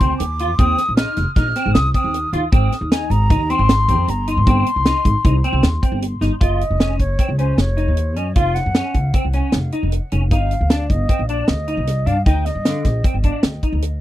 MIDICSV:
0, 0, Header, 1, 5, 480
1, 0, Start_track
1, 0, Tempo, 389358
1, 720, Time_signature, 5, 2, 24, 8
1, 17270, End_track
2, 0, Start_track
2, 0, Title_t, "Flute"
2, 0, Program_c, 0, 73
2, 0, Note_on_c, 0, 84, 91
2, 201, Note_off_c, 0, 84, 0
2, 217, Note_on_c, 0, 86, 93
2, 712, Note_on_c, 0, 87, 111
2, 731, Note_off_c, 0, 86, 0
2, 1179, Note_off_c, 0, 87, 0
2, 1186, Note_on_c, 0, 89, 101
2, 1637, Note_off_c, 0, 89, 0
2, 1661, Note_on_c, 0, 89, 108
2, 2114, Note_off_c, 0, 89, 0
2, 2141, Note_on_c, 0, 87, 102
2, 2371, Note_off_c, 0, 87, 0
2, 2388, Note_on_c, 0, 87, 90
2, 2837, Note_off_c, 0, 87, 0
2, 3592, Note_on_c, 0, 80, 82
2, 3828, Note_on_c, 0, 82, 91
2, 3847, Note_off_c, 0, 80, 0
2, 4313, Note_on_c, 0, 84, 107
2, 4331, Note_off_c, 0, 82, 0
2, 5045, Note_on_c, 0, 82, 88
2, 5064, Note_off_c, 0, 84, 0
2, 5283, Note_on_c, 0, 84, 102
2, 5301, Note_off_c, 0, 82, 0
2, 7192, Note_off_c, 0, 84, 0
2, 7908, Note_on_c, 0, 75, 80
2, 8576, Note_off_c, 0, 75, 0
2, 8620, Note_on_c, 0, 73, 79
2, 9068, Note_off_c, 0, 73, 0
2, 9101, Note_on_c, 0, 72, 72
2, 9325, Note_off_c, 0, 72, 0
2, 9353, Note_on_c, 0, 73, 81
2, 10068, Note_on_c, 0, 75, 74
2, 10086, Note_off_c, 0, 73, 0
2, 10291, Note_off_c, 0, 75, 0
2, 10298, Note_on_c, 0, 77, 98
2, 10531, Note_on_c, 0, 78, 92
2, 10549, Note_off_c, 0, 77, 0
2, 11258, Note_off_c, 0, 78, 0
2, 12708, Note_on_c, 0, 77, 81
2, 13380, Note_off_c, 0, 77, 0
2, 13423, Note_on_c, 0, 75, 78
2, 13874, Note_off_c, 0, 75, 0
2, 13901, Note_on_c, 0, 74, 76
2, 14133, Note_on_c, 0, 75, 85
2, 14152, Note_off_c, 0, 74, 0
2, 14868, Note_on_c, 0, 77, 92
2, 14886, Note_off_c, 0, 75, 0
2, 15092, Note_off_c, 0, 77, 0
2, 15100, Note_on_c, 0, 79, 86
2, 15349, Note_on_c, 0, 75, 80
2, 15367, Note_off_c, 0, 79, 0
2, 16076, Note_off_c, 0, 75, 0
2, 17270, End_track
3, 0, Start_track
3, 0, Title_t, "Clean electric guitar"
3, 0, Program_c, 1, 27
3, 15, Note_on_c, 1, 60, 70
3, 258, Note_off_c, 1, 60, 0
3, 498, Note_on_c, 1, 65, 67
3, 617, Note_off_c, 1, 65, 0
3, 739, Note_on_c, 1, 60, 86
3, 981, Note_off_c, 1, 60, 0
3, 1207, Note_on_c, 1, 63, 62
3, 1452, Note_off_c, 1, 63, 0
3, 1688, Note_on_c, 1, 63, 71
3, 1809, Note_off_c, 1, 63, 0
3, 1925, Note_on_c, 1, 60, 77
3, 2170, Note_off_c, 1, 60, 0
3, 2403, Note_on_c, 1, 60, 60
3, 2648, Note_off_c, 1, 60, 0
3, 2876, Note_on_c, 1, 65, 65
3, 3000, Note_off_c, 1, 65, 0
3, 3109, Note_on_c, 1, 60, 86
3, 3358, Note_off_c, 1, 60, 0
3, 3595, Note_on_c, 1, 63, 73
3, 3842, Note_off_c, 1, 63, 0
3, 4074, Note_on_c, 1, 63, 76
3, 4197, Note_off_c, 1, 63, 0
3, 4314, Note_on_c, 1, 60, 86
3, 4561, Note_off_c, 1, 60, 0
3, 4793, Note_on_c, 1, 60, 64
3, 5039, Note_off_c, 1, 60, 0
3, 5272, Note_on_c, 1, 63, 67
3, 5395, Note_off_c, 1, 63, 0
3, 5511, Note_on_c, 1, 60, 91
3, 5758, Note_off_c, 1, 60, 0
3, 5991, Note_on_c, 1, 63, 64
3, 6238, Note_off_c, 1, 63, 0
3, 6470, Note_on_c, 1, 63, 73
3, 6593, Note_off_c, 1, 63, 0
3, 6709, Note_on_c, 1, 60, 78
3, 6956, Note_off_c, 1, 60, 0
3, 7182, Note_on_c, 1, 60, 68
3, 7430, Note_off_c, 1, 60, 0
3, 7660, Note_on_c, 1, 63, 68
3, 7785, Note_off_c, 1, 63, 0
3, 7898, Note_on_c, 1, 65, 73
3, 8147, Note_off_c, 1, 65, 0
3, 8383, Note_on_c, 1, 61, 61
3, 8631, Note_off_c, 1, 61, 0
3, 8863, Note_on_c, 1, 60, 70
3, 8987, Note_off_c, 1, 60, 0
3, 9106, Note_on_c, 1, 61, 66
3, 9353, Note_off_c, 1, 61, 0
3, 9578, Note_on_c, 1, 63, 63
3, 9827, Note_off_c, 1, 63, 0
3, 10065, Note_on_c, 1, 61, 62
3, 10189, Note_off_c, 1, 61, 0
3, 10307, Note_on_c, 1, 65, 82
3, 10554, Note_off_c, 1, 65, 0
3, 10798, Note_on_c, 1, 61, 59
3, 11042, Note_off_c, 1, 61, 0
3, 11273, Note_on_c, 1, 60, 75
3, 11395, Note_off_c, 1, 60, 0
3, 11512, Note_on_c, 1, 61, 69
3, 11758, Note_off_c, 1, 61, 0
3, 11993, Note_on_c, 1, 63, 61
3, 12239, Note_off_c, 1, 63, 0
3, 12476, Note_on_c, 1, 61, 64
3, 12597, Note_off_c, 1, 61, 0
3, 12721, Note_on_c, 1, 63, 82
3, 12966, Note_off_c, 1, 63, 0
3, 13199, Note_on_c, 1, 62, 69
3, 13445, Note_off_c, 1, 62, 0
3, 13681, Note_on_c, 1, 60, 69
3, 13803, Note_off_c, 1, 60, 0
3, 13925, Note_on_c, 1, 62, 75
3, 14170, Note_off_c, 1, 62, 0
3, 14396, Note_on_c, 1, 63, 60
3, 14644, Note_off_c, 1, 63, 0
3, 14872, Note_on_c, 1, 62, 60
3, 14997, Note_off_c, 1, 62, 0
3, 15120, Note_on_c, 1, 63, 85
3, 15368, Note_off_c, 1, 63, 0
3, 15601, Note_on_c, 1, 50, 64
3, 15849, Note_off_c, 1, 50, 0
3, 16085, Note_on_c, 1, 60, 67
3, 16208, Note_off_c, 1, 60, 0
3, 16326, Note_on_c, 1, 62, 70
3, 16574, Note_off_c, 1, 62, 0
3, 16807, Note_on_c, 1, 63, 56
3, 17056, Note_off_c, 1, 63, 0
3, 17270, End_track
4, 0, Start_track
4, 0, Title_t, "Upright bass"
4, 0, Program_c, 2, 32
4, 9, Note_on_c, 2, 38, 85
4, 187, Note_off_c, 2, 38, 0
4, 250, Note_on_c, 2, 39, 73
4, 606, Note_off_c, 2, 39, 0
4, 606, Note_on_c, 2, 41, 91
4, 694, Note_off_c, 2, 41, 0
4, 731, Note_on_c, 2, 39, 103
4, 907, Note_off_c, 2, 39, 0
4, 1092, Note_on_c, 2, 34, 78
4, 1268, Note_off_c, 2, 34, 0
4, 1446, Note_on_c, 2, 29, 86
4, 1533, Note_off_c, 2, 29, 0
4, 1682, Note_on_c, 2, 34, 87
4, 1861, Note_off_c, 2, 34, 0
4, 2044, Note_on_c, 2, 32, 79
4, 2131, Note_off_c, 2, 32, 0
4, 2159, Note_on_c, 2, 36, 77
4, 2339, Note_off_c, 2, 36, 0
4, 2518, Note_on_c, 2, 39, 71
4, 2788, Note_off_c, 2, 39, 0
4, 2870, Note_on_c, 2, 39, 86
4, 2962, Note_off_c, 2, 39, 0
4, 3111, Note_on_c, 2, 32, 86
4, 3293, Note_off_c, 2, 32, 0
4, 3464, Note_on_c, 2, 39, 83
4, 3739, Note_off_c, 2, 39, 0
4, 3822, Note_on_c, 2, 32, 85
4, 4075, Note_on_c, 2, 39, 91
4, 4094, Note_off_c, 2, 32, 0
4, 4345, Note_off_c, 2, 39, 0
4, 4426, Note_on_c, 2, 32, 91
4, 4790, Note_on_c, 2, 41, 88
4, 4809, Note_off_c, 2, 32, 0
4, 4971, Note_off_c, 2, 41, 0
4, 5022, Note_on_c, 2, 31, 79
4, 5388, Note_on_c, 2, 44, 84
4, 5407, Note_off_c, 2, 31, 0
4, 5479, Note_off_c, 2, 44, 0
4, 5509, Note_on_c, 2, 31, 98
4, 5689, Note_off_c, 2, 31, 0
4, 5870, Note_on_c, 2, 36, 75
4, 6050, Note_off_c, 2, 36, 0
4, 6228, Note_on_c, 2, 32, 90
4, 6318, Note_off_c, 2, 32, 0
4, 6468, Note_on_c, 2, 36, 97
4, 6648, Note_off_c, 2, 36, 0
4, 6812, Note_on_c, 2, 36, 82
4, 6908, Note_off_c, 2, 36, 0
4, 6935, Note_on_c, 2, 39, 78
4, 7120, Note_off_c, 2, 39, 0
4, 7295, Note_on_c, 2, 31, 74
4, 7570, Note_off_c, 2, 31, 0
4, 7657, Note_on_c, 2, 31, 80
4, 7750, Note_off_c, 2, 31, 0
4, 7906, Note_on_c, 2, 30, 80
4, 8177, Note_off_c, 2, 30, 0
4, 8265, Note_on_c, 2, 29, 74
4, 8627, Note_off_c, 2, 29, 0
4, 8627, Note_on_c, 2, 30, 76
4, 8806, Note_off_c, 2, 30, 0
4, 8983, Note_on_c, 2, 37, 71
4, 9255, Note_off_c, 2, 37, 0
4, 9339, Note_on_c, 2, 29, 81
4, 9713, Note_on_c, 2, 39, 80
4, 9732, Note_off_c, 2, 29, 0
4, 10073, Note_off_c, 2, 39, 0
4, 10073, Note_on_c, 2, 42, 73
4, 10251, Note_off_c, 2, 42, 0
4, 10309, Note_on_c, 2, 29, 87
4, 10579, Note_off_c, 2, 29, 0
4, 10677, Note_on_c, 2, 42, 80
4, 10853, Note_off_c, 2, 42, 0
4, 11025, Note_on_c, 2, 37, 83
4, 11206, Note_off_c, 2, 37, 0
4, 11399, Note_on_c, 2, 36, 65
4, 11575, Note_off_c, 2, 36, 0
4, 11757, Note_on_c, 2, 29, 78
4, 11934, Note_off_c, 2, 29, 0
4, 12118, Note_on_c, 2, 29, 73
4, 12295, Note_off_c, 2, 29, 0
4, 12481, Note_on_c, 2, 29, 83
4, 12713, Note_off_c, 2, 29, 0
4, 12713, Note_on_c, 2, 31, 76
4, 12983, Note_off_c, 2, 31, 0
4, 13075, Note_on_c, 2, 38, 77
4, 13437, Note_on_c, 2, 31, 80
4, 13455, Note_off_c, 2, 38, 0
4, 13616, Note_off_c, 2, 31, 0
4, 13797, Note_on_c, 2, 34, 74
4, 14067, Note_off_c, 2, 34, 0
4, 14164, Note_on_c, 2, 38, 79
4, 14512, Note_on_c, 2, 36, 74
4, 14530, Note_off_c, 2, 38, 0
4, 14875, Note_on_c, 2, 43, 75
4, 14893, Note_off_c, 2, 36, 0
4, 15056, Note_off_c, 2, 43, 0
4, 15120, Note_on_c, 2, 38, 93
4, 15391, Note_off_c, 2, 38, 0
4, 15473, Note_on_c, 2, 43, 73
4, 15656, Note_off_c, 2, 43, 0
4, 15839, Note_on_c, 2, 34, 90
4, 16021, Note_off_c, 2, 34, 0
4, 16200, Note_on_c, 2, 31, 65
4, 16382, Note_off_c, 2, 31, 0
4, 16563, Note_on_c, 2, 38, 70
4, 16744, Note_off_c, 2, 38, 0
4, 16919, Note_on_c, 2, 38, 74
4, 17270, Note_off_c, 2, 38, 0
4, 17270, End_track
5, 0, Start_track
5, 0, Title_t, "Drums"
5, 3, Note_on_c, 9, 42, 54
5, 9, Note_on_c, 9, 36, 72
5, 126, Note_off_c, 9, 42, 0
5, 132, Note_off_c, 9, 36, 0
5, 244, Note_on_c, 9, 42, 90
5, 367, Note_off_c, 9, 42, 0
5, 484, Note_on_c, 9, 42, 63
5, 607, Note_off_c, 9, 42, 0
5, 723, Note_on_c, 9, 42, 73
5, 726, Note_on_c, 9, 36, 101
5, 846, Note_off_c, 9, 42, 0
5, 849, Note_off_c, 9, 36, 0
5, 963, Note_on_c, 9, 38, 33
5, 963, Note_on_c, 9, 42, 66
5, 1086, Note_off_c, 9, 38, 0
5, 1086, Note_off_c, 9, 42, 0
5, 1199, Note_on_c, 9, 38, 101
5, 1199, Note_on_c, 9, 42, 78
5, 1322, Note_off_c, 9, 38, 0
5, 1322, Note_off_c, 9, 42, 0
5, 1436, Note_on_c, 9, 38, 31
5, 1436, Note_on_c, 9, 42, 55
5, 1559, Note_off_c, 9, 38, 0
5, 1559, Note_off_c, 9, 42, 0
5, 1676, Note_on_c, 9, 38, 29
5, 1676, Note_on_c, 9, 42, 68
5, 1679, Note_on_c, 9, 36, 86
5, 1800, Note_off_c, 9, 38, 0
5, 1800, Note_off_c, 9, 42, 0
5, 1803, Note_off_c, 9, 36, 0
5, 1917, Note_on_c, 9, 38, 32
5, 1917, Note_on_c, 9, 42, 58
5, 2040, Note_off_c, 9, 38, 0
5, 2040, Note_off_c, 9, 42, 0
5, 2157, Note_on_c, 9, 38, 97
5, 2157, Note_on_c, 9, 42, 73
5, 2281, Note_off_c, 9, 38, 0
5, 2281, Note_off_c, 9, 42, 0
5, 2397, Note_on_c, 9, 36, 71
5, 2398, Note_on_c, 9, 42, 55
5, 2520, Note_off_c, 9, 36, 0
5, 2522, Note_off_c, 9, 42, 0
5, 2639, Note_on_c, 9, 42, 74
5, 2762, Note_off_c, 9, 42, 0
5, 2874, Note_on_c, 9, 42, 58
5, 2997, Note_off_c, 9, 42, 0
5, 3108, Note_on_c, 9, 42, 71
5, 3113, Note_on_c, 9, 36, 103
5, 3232, Note_off_c, 9, 42, 0
5, 3237, Note_off_c, 9, 36, 0
5, 3356, Note_on_c, 9, 38, 36
5, 3356, Note_on_c, 9, 42, 58
5, 3479, Note_off_c, 9, 38, 0
5, 3479, Note_off_c, 9, 42, 0
5, 3597, Note_on_c, 9, 38, 89
5, 3597, Note_on_c, 9, 42, 78
5, 3720, Note_off_c, 9, 38, 0
5, 3720, Note_off_c, 9, 42, 0
5, 3835, Note_on_c, 9, 42, 64
5, 3958, Note_off_c, 9, 42, 0
5, 4073, Note_on_c, 9, 36, 95
5, 4073, Note_on_c, 9, 42, 73
5, 4196, Note_off_c, 9, 36, 0
5, 4197, Note_off_c, 9, 42, 0
5, 4313, Note_on_c, 9, 42, 56
5, 4437, Note_off_c, 9, 42, 0
5, 4551, Note_on_c, 9, 38, 102
5, 4551, Note_on_c, 9, 42, 77
5, 4674, Note_off_c, 9, 38, 0
5, 4674, Note_off_c, 9, 42, 0
5, 4790, Note_on_c, 9, 36, 66
5, 4790, Note_on_c, 9, 42, 61
5, 4913, Note_off_c, 9, 42, 0
5, 4914, Note_off_c, 9, 36, 0
5, 5032, Note_on_c, 9, 42, 84
5, 5155, Note_off_c, 9, 42, 0
5, 5270, Note_on_c, 9, 42, 63
5, 5393, Note_off_c, 9, 42, 0
5, 5507, Note_on_c, 9, 42, 72
5, 5509, Note_on_c, 9, 36, 96
5, 5631, Note_off_c, 9, 42, 0
5, 5632, Note_off_c, 9, 36, 0
5, 5749, Note_on_c, 9, 42, 60
5, 5872, Note_off_c, 9, 42, 0
5, 5985, Note_on_c, 9, 38, 91
5, 5985, Note_on_c, 9, 42, 76
5, 6109, Note_off_c, 9, 38, 0
5, 6109, Note_off_c, 9, 42, 0
5, 6227, Note_on_c, 9, 36, 78
5, 6230, Note_on_c, 9, 42, 57
5, 6351, Note_off_c, 9, 36, 0
5, 6353, Note_off_c, 9, 42, 0
5, 6468, Note_on_c, 9, 36, 97
5, 6470, Note_on_c, 9, 42, 69
5, 6591, Note_off_c, 9, 36, 0
5, 6594, Note_off_c, 9, 42, 0
5, 6706, Note_on_c, 9, 42, 56
5, 6829, Note_off_c, 9, 42, 0
5, 6943, Note_on_c, 9, 38, 91
5, 6943, Note_on_c, 9, 42, 69
5, 7066, Note_off_c, 9, 38, 0
5, 7066, Note_off_c, 9, 42, 0
5, 7186, Note_on_c, 9, 36, 76
5, 7187, Note_on_c, 9, 42, 59
5, 7309, Note_off_c, 9, 36, 0
5, 7311, Note_off_c, 9, 42, 0
5, 7425, Note_on_c, 9, 42, 80
5, 7548, Note_off_c, 9, 42, 0
5, 7667, Note_on_c, 9, 38, 32
5, 7667, Note_on_c, 9, 42, 56
5, 7791, Note_off_c, 9, 38, 0
5, 7791, Note_off_c, 9, 42, 0
5, 7904, Note_on_c, 9, 36, 94
5, 7904, Note_on_c, 9, 42, 71
5, 8027, Note_off_c, 9, 36, 0
5, 8028, Note_off_c, 9, 42, 0
5, 8152, Note_on_c, 9, 42, 58
5, 8275, Note_off_c, 9, 42, 0
5, 8386, Note_on_c, 9, 38, 99
5, 8386, Note_on_c, 9, 42, 74
5, 8509, Note_off_c, 9, 38, 0
5, 8509, Note_off_c, 9, 42, 0
5, 8624, Note_on_c, 9, 36, 71
5, 8625, Note_on_c, 9, 42, 54
5, 8747, Note_off_c, 9, 36, 0
5, 8749, Note_off_c, 9, 42, 0
5, 8860, Note_on_c, 9, 42, 71
5, 8863, Note_on_c, 9, 36, 83
5, 8983, Note_off_c, 9, 42, 0
5, 8986, Note_off_c, 9, 36, 0
5, 9105, Note_on_c, 9, 42, 59
5, 9228, Note_off_c, 9, 42, 0
5, 9346, Note_on_c, 9, 38, 84
5, 9346, Note_on_c, 9, 42, 65
5, 9469, Note_off_c, 9, 38, 0
5, 9469, Note_off_c, 9, 42, 0
5, 9585, Note_on_c, 9, 42, 46
5, 9708, Note_off_c, 9, 42, 0
5, 9823, Note_on_c, 9, 42, 73
5, 9946, Note_off_c, 9, 42, 0
5, 10064, Note_on_c, 9, 42, 53
5, 10187, Note_off_c, 9, 42, 0
5, 10299, Note_on_c, 9, 42, 69
5, 10305, Note_on_c, 9, 36, 93
5, 10423, Note_off_c, 9, 42, 0
5, 10428, Note_off_c, 9, 36, 0
5, 10547, Note_on_c, 9, 38, 28
5, 10547, Note_on_c, 9, 42, 55
5, 10670, Note_off_c, 9, 38, 0
5, 10670, Note_off_c, 9, 42, 0
5, 10783, Note_on_c, 9, 38, 95
5, 10783, Note_on_c, 9, 42, 70
5, 10906, Note_off_c, 9, 38, 0
5, 10906, Note_off_c, 9, 42, 0
5, 11024, Note_on_c, 9, 42, 51
5, 11028, Note_on_c, 9, 36, 64
5, 11147, Note_off_c, 9, 42, 0
5, 11151, Note_off_c, 9, 36, 0
5, 11261, Note_on_c, 9, 42, 78
5, 11268, Note_on_c, 9, 36, 90
5, 11385, Note_off_c, 9, 42, 0
5, 11391, Note_off_c, 9, 36, 0
5, 11504, Note_on_c, 9, 42, 53
5, 11627, Note_off_c, 9, 42, 0
5, 11739, Note_on_c, 9, 38, 89
5, 11739, Note_on_c, 9, 42, 70
5, 11862, Note_off_c, 9, 38, 0
5, 11862, Note_off_c, 9, 42, 0
5, 11986, Note_on_c, 9, 42, 55
5, 12109, Note_off_c, 9, 42, 0
5, 12228, Note_on_c, 9, 42, 83
5, 12351, Note_off_c, 9, 42, 0
5, 12470, Note_on_c, 9, 42, 57
5, 12593, Note_off_c, 9, 42, 0
5, 12709, Note_on_c, 9, 42, 76
5, 12713, Note_on_c, 9, 36, 85
5, 12832, Note_off_c, 9, 42, 0
5, 12836, Note_off_c, 9, 36, 0
5, 12954, Note_on_c, 9, 42, 62
5, 13078, Note_off_c, 9, 42, 0
5, 13192, Note_on_c, 9, 38, 106
5, 13192, Note_on_c, 9, 42, 73
5, 13315, Note_off_c, 9, 38, 0
5, 13315, Note_off_c, 9, 42, 0
5, 13436, Note_on_c, 9, 36, 75
5, 13439, Note_on_c, 9, 42, 54
5, 13559, Note_off_c, 9, 36, 0
5, 13562, Note_off_c, 9, 42, 0
5, 13672, Note_on_c, 9, 42, 74
5, 13674, Note_on_c, 9, 36, 88
5, 13795, Note_off_c, 9, 42, 0
5, 13797, Note_off_c, 9, 36, 0
5, 13914, Note_on_c, 9, 42, 52
5, 14038, Note_off_c, 9, 42, 0
5, 14150, Note_on_c, 9, 38, 98
5, 14150, Note_on_c, 9, 42, 68
5, 14273, Note_off_c, 9, 38, 0
5, 14273, Note_off_c, 9, 42, 0
5, 14394, Note_on_c, 9, 42, 49
5, 14517, Note_off_c, 9, 42, 0
5, 14636, Note_on_c, 9, 38, 33
5, 14636, Note_on_c, 9, 42, 71
5, 14759, Note_off_c, 9, 38, 0
5, 14759, Note_off_c, 9, 42, 0
5, 14878, Note_on_c, 9, 42, 53
5, 15001, Note_off_c, 9, 42, 0
5, 15114, Note_on_c, 9, 42, 70
5, 15118, Note_on_c, 9, 36, 96
5, 15238, Note_off_c, 9, 42, 0
5, 15241, Note_off_c, 9, 36, 0
5, 15358, Note_on_c, 9, 38, 30
5, 15358, Note_on_c, 9, 42, 59
5, 15481, Note_off_c, 9, 38, 0
5, 15481, Note_off_c, 9, 42, 0
5, 15599, Note_on_c, 9, 38, 91
5, 15599, Note_on_c, 9, 42, 75
5, 15722, Note_off_c, 9, 38, 0
5, 15722, Note_off_c, 9, 42, 0
5, 15836, Note_on_c, 9, 38, 31
5, 15836, Note_on_c, 9, 42, 57
5, 15840, Note_on_c, 9, 36, 67
5, 15959, Note_off_c, 9, 38, 0
5, 15959, Note_off_c, 9, 42, 0
5, 15963, Note_off_c, 9, 36, 0
5, 16077, Note_on_c, 9, 42, 69
5, 16081, Note_on_c, 9, 36, 88
5, 16201, Note_off_c, 9, 42, 0
5, 16204, Note_off_c, 9, 36, 0
5, 16314, Note_on_c, 9, 42, 56
5, 16321, Note_on_c, 9, 36, 68
5, 16437, Note_off_c, 9, 42, 0
5, 16444, Note_off_c, 9, 36, 0
5, 16556, Note_on_c, 9, 38, 91
5, 16556, Note_on_c, 9, 42, 80
5, 16680, Note_off_c, 9, 38, 0
5, 16680, Note_off_c, 9, 42, 0
5, 16798, Note_on_c, 9, 42, 51
5, 16802, Note_on_c, 9, 36, 64
5, 16922, Note_off_c, 9, 42, 0
5, 16926, Note_off_c, 9, 36, 0
5, 17041, Note_on_c, 9, 42, 83
5, 17164, Note_off_c, 9, 42, 0
5, 17270, End_track
0, 0, End_of_file